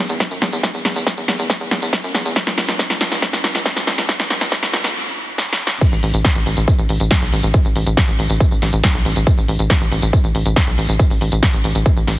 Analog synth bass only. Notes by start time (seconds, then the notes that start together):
0.09 E2
0.31 F#2
0.42 E2
0.53 E2
0.74 E2
0.85 E2
0.96 E2
1.17 E2
1.28 E2
1.39 E2
1.61 E2
1.71 E2
1.82 E2
2.04 F#2
2.15 E2
2.25 E2
2.47 C#2
2.58 C#2
2.69 C#2
2.90 C#2
3.01 C#2
3.12 C#2
3.33 C#2
3.44 C#2
3.55 C#2
3.77 D2
3.87 C#2
3.98 C#2
4.20 C#2
4.30 C#2
4.41 C#2
4.63 C#2
4.74 C#2
4.84 C#2
5.92 A1
6.03 A1
6.14 A1
6.35 A1
6.46 A1
6.57 A1
6.79 A1
6.89 A1
7.00 A1
7.22 B1
7.33 A1
7.43 A1
7.65 A1
7.76 A1
7.86 A1
8.08 A1
8.19 A1
8.30 A1
8.51 A1
8.62 A1
8.73 A1
8.94 B1
9.05 A1
9.16 A1
9.38 A1
9.48 A1
9.59 A1
9.81 A1
9.92 A1
10.02 A1
10.24 A1
10.35 A1
10.46 A1
10.67 B1
10.78 A1
10.89 A1
11.10 A1
11.21 A1
11.32 A1
11.54 A1
11.64 A1
11.75 A1
11.97 A1
12.07 A1